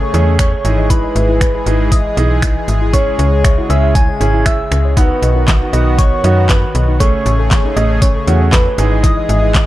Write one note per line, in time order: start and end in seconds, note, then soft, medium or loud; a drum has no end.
0.00 0.63 C#3 medium
0.00 0.63 A3 medium
0.00 0.63 G#4 loud
0.00 0.13 A4 medium
0.00 0.36 C#5 loud
0.14 0.55 E2 medium
0.14 0.51 A3 medium
0.14 0.51 C#4 medium
0.14 0.51 G#4 medium
0.14 0.26 C#5 medium
0.14 closed hi-hat soft
0.27 0.38 C#4 medium
0.39 0.51 A4 medium
0.39 0.92 C#5 medium
0.39 finger snap loud
0.39 kick loud
0.39 closed hi-hat medium
0.53 0.64 C#5 medium
0.64 1.06 G#1 medium
0.64 2.91 E3 medium
0.64 4.93 G#3 medium
0.64 1.36 D#4 medium
0.64 1.36 E4 medium
0.64 4.93 G#4 medium
0.64 1.36 G#4 medium
0.64 closed hi-hat medium
0.78 0.89 D#5 medium
0.90 1.02 E4 loud
0.90 1.40 B4 loud
0.90 kick loud
0.90 closed hi-hat medium
1.03 1.14 D#5 medium
1.15 1.56 G#1 medium
1.15 1.28 E5 medium
1.15 closed hi-hat medium
1.29 1.40 E4 medium
1.41 1.93 B4 medium
1.41 finger snap loud
1.41 kick loud
1.41 closed hi-hat medium
1.54 1.60 E4 soft
1.54 1.60 G#4 medium
1.66 2.07 G#1 medium
1.66 1.90 D#4 medium
1.66 1.91 E4 medium
1.66 1.79 E4 medium
1.66 1.91 G#4 medium
1.66 closed hi-hat soft
1.92 2.68 D#5 medium
1.92 2.04 E5 loud
1.92 kick loud
1.92 closed hi-hat medium
2.17 2.58 B1 medium
2.17 2.54 D#4 medium
2.17 2.54 E4 medium
2.17 2.54 G#4 medium
2.17 2.29 D#5 medium
2.17 closed hi-hat medium
2.42 2.55 E4 medium
2.42 finger snap loud
2.42 kick loud
2.42 closed hi-hat medium
2.68 3.09 G#1 medium
2.68 2.80 E5 medium
2.68 closed hi-hat medium
2.81 2.92 E4 medium
2.93 4.95 C#3 medium
2.93 3.24 C#4 medium
2.93 3.24 E4 medium
2.93 3.24 G#4 medium
2.93 3.06 C#5 loud
2.93 3.71 C#5 loud
2.93 kick loud
2.93 closed hi-hat medium
3.19 3.60 C#2 medium
3.19 3.31 E4 medium
3.19 closed hi-hat medium
3.32 3.43 C#5 medium
3.44 3.57 E5 medium
3.44 finger snap loud
3.44 kick loud
3.44 closed hi-hat medium
3.58 3.63 E4 medium
3.58 3.69 E4 medium
3.58 3.64 F#4 medium
3.70 4.11 C#2 medium
3.70 3.94 C#4 medium
3.70 3.94 E4 medium
3.70 3.94 G#4 medium
3.70 3.82 C#5 medium
3.70 3.94 E5 loud
3.70 closed hi-hat soft
3.83 3.94 E5 medium
3.95 4.07 E4 medium
3.95 4.47 G#5 loud
3.95 kick loud
3.95 closed hi-hat medium
4.09 4.20 C#5 medium
4.20 4.62 G#1 medium
4.20 4.57 C#4 medium
4.20 4.57 E4 medium
4.20 4.58 G#4 medium
4.20 4.33 E5 medium
4.20 closed hi-hat soft
4.34 4.45 E4 medium
4.46 4.58 C#5 medium
4.46 4.85 E5 loud
4.46 finger snap loud
4.46 kick loud
4.46 closed hi-hat medium
4.60 4.70 E5 medium
4.71 5.12 C#2 medium
4.71 finger snap medium
4.71 closed hi-hat medium
4.85 4.96 C#5 medium
4.97 6.98 D#3 medium
4.97 5.27 B3 medium
4.97 6.98 B3 medium
4.97 5.09 D#4 medium
4.97 5.27 D#4 medium
4.97 6.98 F#4 loud
4.97 5.27 F#4 medium
4.97 5.75 B4 loud
4.97 kick loud
4.97 closed hi-hat medium
5.10 5.21 B4 medium
5.22 5.63 B1 medium
5.22 5.35 D#5 medium
5.22 closed hi-hat medium
5.36 5.47 D#4 medium
5.48 kick loud
5.48 snare medium
5.48 clap loud
5.48 closed hi-hat medium
5.61 5.67 D#4 soft
5.61 5.67 F#4 medium
5.73 6.14 B1 medium
5.73 5.97 B3 medium
5.73 5.97 D#4 medium
5.73 5.85 D#4 medium
5.73 5.97 F#4 medium
5.73 6.00 D#5 loud
5.73 closed hi-hat soft
5.98 6.49 C#5 loud
5.98 6.11 D#5 medium
5.98 kick loud
5.98 closed hi-hat medium
6.24 6.65 F#2 medium
6.24 6.61 B3 medium
6.24 6.61 D#4 medium
6.24 6.61 F#4 medium
6.24 6.36 B4 medium
6.24 closed hi-hat medium
6.49 6.62 D#4 medium
6.49 6.86 B4 medium
6.49 kick loud
6.49 snare medium
6.49 clap loud
6.49 closed hi-hat medium
6.75 7.16 B1 medium
6.75 6.87 D#5 medium
6.75 closed hi-hat medium
6.88 6.99 D#4 medium
7.00 8.77 C#3 medium
7.00 7.31 A3 medium
7.00 8.77 A3 medium
7.00 7.31 C#4 medium
7.00 8.77 G#4 loud
7.00 7.31 G#4 medium
7.00 7.13 A4 loud
7.00 7.78 C#5 loud
7.00 kick loud
7.00 closed hi-hat medium
7.26 7.67 A1 medium
7.26 7.38 C#4 medium
7.26 closed hi-hat soft
7.39 7.50 A4 medium
7.51 7.63 C#5 medium
7.51 kick loud
7.51 snare medium
7.51 clap loud
7.51 closed hi-hat medium
7.64 7.70 C#4 soft
7.64 7.76 C#4 medium
7.64 7.70 D#4 medium
7.76 8.18 A1 medium
7.76 8.01 A3 medium
7.76 8.01 C#4 medium
7.76 8.01 G#4 medium
7.76 7.89 A4 medium
7.76 8.03 D#5 medium
7.76 closed hi-hat soft
7.90 8.01 C#5 medium
8.02 8.14 C#4 medium
8.02 8.52 C#5 medium
8.02 kick loud
8.02 closed hi-hat medium
8.15 8.26 A4 medium
8.27 8.68 E2 medium
8.27 8.64 A3 medium
8.27 8.64 C#4 medium
8.27 8.64 F#4 medium
8.27 8.40 C#5 medium
8.27 closed hi-hat medium
8.41 8.52 C#4 medium
8.53 8.65 A4 medium
8.53 8.89 B4 medium
8.53 kick loud
8.53 snare loud
8.53 clap loud
8.53 closed hi-hat medium
8.66 8.77 C#5 medium
8.78 9.19 G#1 medium
8.78 9.66 E3 medium
8.78 9.66 G#3 medium
8.78 9.50 D#4 medium
8.78 9.50 E4 medium
8.78 9.66 G#4 medium
8.78 9.50 G#4 medium
8.78 closed hi-hat medium
8.92 9.03 D#5 medium
9.04 9.16 E4 loud
9.04 9.66 D#5 loud
9.04 kick loud
9.04 closed hi-hat medium
9.17 9.28 D#5 medium
9.29 9.66 G#1 medium
9.29 9.41 E5 medium
9.29 closed hi-hat medium
9.43 9.53 E4 medium
9.55 kick loud
9.55 snare medium
9.55 clap loud
9.55 closed hi-hat medium